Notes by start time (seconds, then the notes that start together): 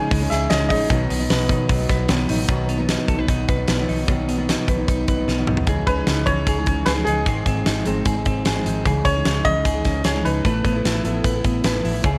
Already playing: C#3 G#3 C#4 D#4 G#4 G#5
0.11 C#2 G#3, kick, hi-hat pedal, open hi-hat
0.21 G#3 C#4 D#4
0.30 C#2 G#4 E5, snare, hi-hat pedal, open hi-hat
0.50 C#2 C#3 G#3 C#4 D#4 D#5, snare, hi-hat pedal, open hi-hat
0.69 A1 C#3 G#3 C#4 D#4 D#5, kick, hi-hat pedal, open hi-hat
0.90 B1 B2 D#3 F#3 B3 D#4, kick, hi-hat pedal, open hi-hat
1.10 B1 B3, hi-hat pedal, open hi-hat
1.19 F#3 B3 D#4
1.30 B1 B4, snare, hi-hat pedal, open hi-hat
1.49 B2 D#3 F#3 B3 D#4, kick, hi-hat pedal, open hi-hat
1.69 B1 F#3, kick, hi-hat pedal, open hi-hat
1.78 F#3 B3 D#4
1.89 B1 B4, kick, snare, hi-hat pedal, open hi-hat
2.08 B1 D#3 F#3 B3 D#4, snare, hi-hat pedal, open hi-hat
2.28 A1 D#3 F#3 B3 D#4, hi-hat pedal, open hi-hat
2.48 B1 B2 D#3 F#3 B3 D#4, kick, closed hi-hat
2.69 B3, closed hi-hat
2.78 B2 D#3 F#3 B3 D#4
2.89 D#4, snare, closed hi-hat
3.08 B1 A4, kick, closed hi-hat
3.17 F#3 B3 D#4 B4
3.28 B1 D#4, kick, closed hi-hat
3.48 B1 B4, kick, closed hi-hat
3.57 F#3 B3 D#4
3.68 B1 B3, snare, closed hi-hat
3.78 B2 D#3 F#3 B3 D#4
3.89 B1 D#4, open hi-hat
4.08 B1 B2 D#3 F#3 B3 D#4, kick, closed hi-hat
4.28 B3, closed hi-hat
4.38 B2 D#3 F#3 B3 D#4
4.49 D#4, snare, closed hi-hat
4.68 B1 B4, kick, closed hi-hat
4.78 F#3 B3 D#4
4.88 B1 D#4, kick, closed hi-hat
5.08 B1 B4, kick, closed hi-hat
5.17 F#3 B3 D#4
5.28 B1 B3, snare
5.38 B2 D#3 F#3 B3 D#4
5.47 B1 D#4, mid tom
5.57 floor tom
5.67 C#2 C#3 E3 G#3 D#4 G#4, kick, closed hi-hat
5.87 C#2 C#4 B4, kick, closed hi-hat
5.97 E3 G#3 D#4
6.07 C#2 D#4, snare, closed hi-hat
6.26 C#2 C#3 E3 G#3 C#4 D#4 C#5, kick, closed hi-hat
6.47 C#2 G#4, kick, closed hi-hat
6.57 E3 G#3 D#4
6.66 C#2 C#4, kick, closed hi-hat
6.86 C#2 G#4 B4, snare, closed hi-hat
6.96 C#3 E3 G#3 D#4
7.05 C#2 D#4 G#4, closed hi-hat
7.25 G#1 G#2 D#3 G#3 C4 D#4 G#4, kick, closed hi-hat
7.46 G#1 C4, kick, closed hi-hat
7.55 G#3 C4 D#4
7.66 G#1 D#4, snare, closed hi-hat
7.85 G#1 G#2 D#3 G#3 C4 D#4, closed hi-hat
8.05 G#1 G#4, kick, closed hi-hat
8.15 G#3 C4 D#4
8.26 G#1 C4, kick, closed hi-hat
8.45 G#1 G#4, snare, closed hi-hat
8.55 G#2 D#3 G#3 C4 D#4
8.66 G#1 D#4, closed hi-hat
8.84 C#2 C#3 E3 G#3 D#4 G#4, kick, closed hi-hat
9.05 C#2 C#4 C#5, kick, closed hi-hat
9.14 E3 G#3 D#4
9.25 C#2 D#4, snare, closed hi-hat
9.44 C#2 C#3 E3 G#3 C#4 D#4 D#5, kick, closed hi-hat
9.65 C#2 G#4, kick, closed hi-hat
9.74 E3 G#3 D#4
9.85 C#2 C#4, kick, snare, closed hi-hat
10.04 C#2 G#4 C#5, snare, closed hi-hat
10.14 C#3 E3 G#3 D#4
10.25 C#2 D#4 B4, closed hi-hat
10.44 A1 A3 B3 E4 A4 B4, kick, closed hi-hat
10.65 A1 B3, kick, closed hi-hat
10.73 B3 E4 A4
10.85 A1 E4, snare, closed hi-hat
11.04 A1 A3 B3 E4 A4, closed hi-hat
11.24 A1 B4, kick, closed hi-hat
11.33 B3 E4 A4
11.44 A1 B3, kick, closed hi-hat
11.64 A1 B4, snare, closed hi-hat
11.74 A3 B3 E4 A4
11.85 A1 E4, open hi-hat
12.03 C#2 C#3 C#4 E4 G#4 D#5, kick, closed hi-hat